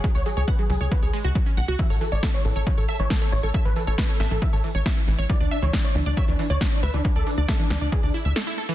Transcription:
<<
  \new Staff \with { instrumentName = "Supersaw synth" } { \time 4/4 \key a \major \tempo 4 = 137 gis'16 cis''16 gis'16 gis'16 b'16 gis'16 gis'16 gis'16 b'16 gis'16 r4. | e''16 a'16 a'16 d''16 a'16 cis''16 a'16 a'16 cis''16 a'16 a'16 cis''16 a'16 a'16 cis''16 a'16 | r16 b'16 a'16 a'16 b'16 a'16 a'16 a'16 e''16 a'16 r4. | d''16 d'16 d'16 cis''16 d'16 cis''16 d'16 d'16 cis''16 d'16 d'16 cis''16 d'16 d'16 b'16 d'16 |
d'16 a'16 d'16 d'16 a'16 d'16 d'16 d'16 gis'16 d'16 r4. | }
  \new Staff \with { instrumentName = "Synth pluck" } { \time 4/4 \key a \major fis16 cis''16 fis16 cis''16 fis''16 fis16 fis16 cis''16 fis16 cis''16 gis16 fis'16 fis16 cis'16 fis''16 fis'16 | e16 cis''16 e16 cis''16 e''16 e16 e16 cis''16 e16 cis''16 e''16 e16 e16 cis''16 e16 cis''16 | e''16 e16 e16 cis''16 e16 cis''16 e''16 e16 e16 cis''16 e16 cis''16 e''16 e16 e16 cis''16 | e16 d''16 e''16 e16 e16 d''16 e16 d''16 e''16 e16 e16 d''16 e16 d''16 e''16 e16 |
e16 d''16 e16 d''16 e''16 e16 e16 d''16 e16 d''16 e'16 e''16 a'16 e'16 a'16 e16 | }
  \new Staff \with { instrumentName = "Analog synth bass" } { \clef bass \time 4/4 \key a \major r16 cis,16 r16 cis,16 r8 cis,16 cis,16 r16 cis,16 r16 cis,16 r8 b,,16 cis,16 | r16 a,,16 r16 a,,16 r8 a,,16 a,,16 r16 a,,16 r16 a,,16 r8 a,,16 a,,16 | r16 a,,16 r16 a,,16 r8 a,,16 a,,16 r16 a,,16 r16 a,,16 r8 a,,16 a,,16 | r16 d,16 r16 d,16 r8 d,16 d,16 r16 d,16 r16 d,16 r8 d,16 d,16 |
r16 d,16 r16 d,16 r8 d,16 d,16 r16 d,16 r16 d,16 r4 | }
  \new DrumStaff \with { instrumentName = "Drums" } \drummode { \time 4/4 <hh bd>16 hh16 hho16 hh16 <hh bd>16 hh16 hho16 hh16 <hh bd>16 hho16 hho16 hh16 <hh bd>16 hh16 hho16 hh16 | <hh bd>16 hh16 hho16 hh16 <hh bd sn>16 hho16 hho16 hh16 <hh bd>16 hh16 hho16 hh16 <hh bd sn>16 hh16 hho16 hh16 | <hh bd>16 hh16 hho16 hh16 <hh bd sn>16 hh16 <hho sn>16 hh16 <hh bd>16 hho16 hho16 hh16 <hh bd sn>16 hh16 hho16 hh16 | <hh bd>16 hh16 hho16 hh16 <hh bd sn>16 hho16 hho16 hh16 <hh bd>16 hh16 hho16 hh16 <hh bd sn>16 hh16 hho16 hh16 |
<hh bd>16 hh16 hho16 hh16 <hh bd sn>16 hh16 <hho sn>16 hh16 <hh bd>16 hho16 hho16 hh16 <hh sn>16 hh16 hho16 hh16 | }
>>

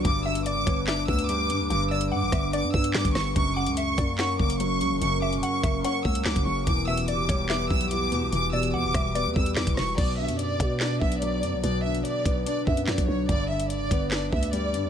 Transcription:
<<
  \new Staff \with { instrumentName = "Violin section" } { \time 4/4 \key b \minor \tempo 4 = 145 d'''8 e'''8 d'''4 d'''8 e'''8 d'''4 | d'''8 e'''8 d'''4 d'''8 e'''8 d'''8 cis'''8 | cis'''8 d'''8 cis'''4 cis'''8 d'''8 cis'''4 | cis'''8 d'''8 cis'''4 cis'''8 e'''8 d'''8 cis'''8 |
d'''8 e'''8 d'''4 d'''8 e'''8 d'''4 | d'''8 e'''8 d'''4 d'''8 e'''8 d'''8 cis'''8 | d''8 e''8 d''4 d''8 e''8 d''4 | d''8 e''8 d''4 d''8 e''8 d''8 cis''8 |
d''8 e''8 d''4 d''8 e''8 d''4 | }
  \new Staff \with { instrumentName = "Synth pluck" } { \time 4/4 \key b \minor r8 e''8 d''8 cis''8 e''2 | r8 d''8 fis''8 e''8 d''4 r4 | r8 fis''8 e''8 d''8 fis''2 | r8 e''8 fis''8 e''8 fis''4 r4 |
r8 e''8 d''8 cis''8 e''2 | r8 d''8 fis''8 e''8 d''4 r4 | r1 | r1 |
r1 | }
  \new Staff \with { instrumentName = "Ambient pad" } { \time 4/4 \key b \minor <g d' b'>1~ | <g d' b'>1 | <fis cis' ais'>1~ | <fis cis' ais'>1 |
<e b g'>1~ | <e b g'>1 | r1 | r1 |
r1 | }
  \new Staff \with { instrumentName = "Grand piano" } { \clef bass \time 4/4 \key b \minor g,8 d4 b8 d'8 b8 g8 d8 | g,8 d4 b8 d'8 b8 g8 d8 | fis,8 cis4 ais8 cis'8 ais8 fis8 cis8 | fis,8 cis4 ais8 cis'8 ais8 fis8 cis8 |
e,8 b,4 g8 b8 g8 e8 b,8 | e,8 b,4 g8 b8 g8 e8 b,8 | b,8 d4 b8 d'8 b8 fis8 d8 | b,8 d4 b8 d'8 b8 fis8 d8 |
g,8 d4 b8 d'8 b8 g8 d8 | }
  \new Staff \with { instrumentName = "808-style bass" } { \clef bass \time 4/4 \key b \minor g,,4 fis,,8 g,,4 d,4 g,16 d,16 | g,,4 g,16 g,,16 g,,8. g,16 g,8 g,16 g,,16 g,,8 | fis,,8. cis,8. fis,4 fis,,4 cis,16 fis,,16 | fis,,8. e,,16 r8 fis,,8 r8 cis,8 cis,16 fis,,16 fis,,8 |
e,,4 d,,8 e,,4 b,,4 e,16 b,,16 | e,,4 e,16 e,,16 e,,8. e,16 e,8 e,16 e,,16 e,,8 | b,,8. fis,8. b,4 b,,4 fis,16 b,,16 | b,,8. ais,,16 r8 b,,8 r8 fis,8 fis,16 b,,16 b,,8 |
g,,4 fis,,8 g,,4 d,4 g,16 d,16 | }
  \new DrumStaff \with { instrumentName = "Drums" } \drummode { \time 4/4 <hh bd>8. hh16 hh8 <hh bd>8 <hc sn>8 bd16 hh16 hh8 hh8 | hh8. hh16 r8 <hh bd ss>8 hh8 bd16 hh16 <hc sn>16 <hh bd>16 <hho ss sn>8 | <hh bd>8. hh16 hh8 <hh bd>8 <hc sn>8 bd16 hh16 hh8 hh8 | hh8. hh16 hh8 <hh bd>8 hh8 bd16 hh16 <hc sn>16 <hh bd>8. |
<hh bd>8. hh16 hh8 <hh bd>8 <hc sn>8 bd16 hh16 hh8 hh8 | hh8. hh16 r8 <hh bd ss>8 hh8 bd16 hh16 <hc sn>16 <hh bd>16 <hho ss sn>8 | <cymc hh bd>8. hh16 hh8 <hh bd>8 <hc sn>8 bd16 hh16 hh8 hh8 | hh8. hh16 hh8 <hh bd>8 hh8 bd16 hh16 <hc sn>16 <hh bd>8. |
<hh bd>8. hh16 hh8 <hh bd>8 <hc sn>8 bd16 hh16 hh8 hh8 | }
>>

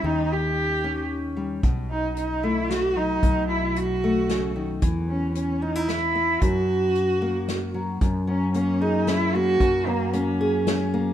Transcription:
<<
  \new Staff \with { instrumentName = "Cello" } { \time 3/4 \key fis \mixolydian \tempo 4 = 113 dis'8 g'4. r4 | r8 dis'8 dis'8 e'8 fis'8 dis'8~ | dis'8 e'8 fis'4. r8 | r8 cis'8 cis'8 dis'8 e'4 |
fis'2~ fis'8 r8 | r8 cis'8 cis'8 dis'8 e'8 fis'8~ | fis'8 ais8 cis'4. r8 | }
  \new Staff \with { instrumentName = "Steel-string acoustic guitar" } { \time 3/4 \key fis \mixolydian << { r4. cis'4. | r4. a4.~ | a4. a4. | r4. cis'16 e'4~ e'16 |
r4. ais4. | r4 ais8 gis'8 cis'8 ais8 | r4 ais8 gis'8 cis'8 ais8 | } \\ { dis2~ dis8 g8 | b,2~ b,8 fis8 | b,2 cis8 dis8 | e2~ e8 b8 |
fis,2~ fis,8 fis8 | fis,8 fis2~ fis8 | fis,8 fis2~ fis8 | } >> }
  \new Staff \with { instrumentName = "Fretless electric bass" } { \clef bass \time 3/4 \key fis \mixolydian dis,2. | b,,2. | b,,2. | e,2. |
fis,2. | fis,2. | fis,2. | }
  \new DrumStaff \with { instrumentName = "Drums" } \drummode { \time 3/4 r4 r4 r4 | <hh bd>4 hh4 <hh sn>4 | <hh bd>4 hh4 <hh sn>4 | <hh bd>4 hh4 <hh sn>4 |
<hh bd>4 hh4 <hh sn>4 | <hh bd>4 hh4 <hh sn>4 | <hh bd>4 hh4 <hh sn>4 | }
>>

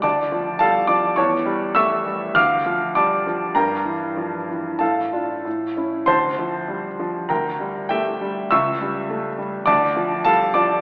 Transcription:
<<
  \new Staff \with { instrumentName = "Grand piano" } { \time 2/4 \key d \minor \tempo 4 = 101 <d'' a'' d'''>4 <a' f'' a''>8 <d'' d'''>8 | <cis'' a'' cis'''>4 <e'' cis''' e'''>4 | <f'' d''' f'''>4 <d'' a'' d'''>8 r8 | <bes' g'' bes''>2 |
<a' f'' a''>4. r8 | <c'' a'' c'''>2 | <bes' g'' bes''>4 <g' e'' g''>4 | <e'' cis''' e'''>2 |
<d'' a'' d'''>4 <a' f'' a''>8 <d'' d'''>8 | }
  \new Staff \with { instrumentName = "Grand piano" } { \clef bass \time 2/4 \key d \minor d,8 f8 g8 f8 | e,8 g8 a8 g8 | d,8 f8 g8 f8 | g,8 e8 f8 e8 |
a,8 <d' f'>8 a,8 <cis' e'>8 | d,8 f8 g8 f8 | d,8 g8 a8 g8 | cis,8 g8 a8 g8 |
d,8 f8 g8 f8 | }
>>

